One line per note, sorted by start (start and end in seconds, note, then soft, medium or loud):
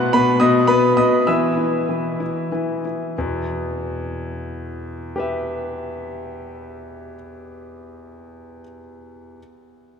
0.00 0.12 B2 loud
0.00 0.39 B3 medium
0.00 0.11 F#5 loud
0.00 0.14 F#6 loud
0.13 0.39 B2 medium
0.13 0.39 B4 medium
0.13 0.41 B5 loud
0.40 0.96 B2 loud
0.40 0.67 D#5 medium
0.40 0.68 D#6 loud
0.67 1.25 B3 medium
0.67 0.95 B4 medium
0.67 0.97 B5 loud
0.97 1.27 B2 medium
0.97 1.26 D#5 medium
0.97 1.27 D#6 loud
1.27 1.87 E3 medium
1.27 2.81 E5 medium
1.27 2.85 E6 medium
1.57 2.19 E4 medium
1.89 2.51 E3 medium
2.20 2.84 E4 medium
2.52 3.16 E3 medium
2.85 3.17 E4 medium
3.18 7.13 E2 medium
3.18 7.13 B2 medium
5.16 8.59 G4 medium
5.16 8.61 B4 medium
5.16 8.61 E5 medium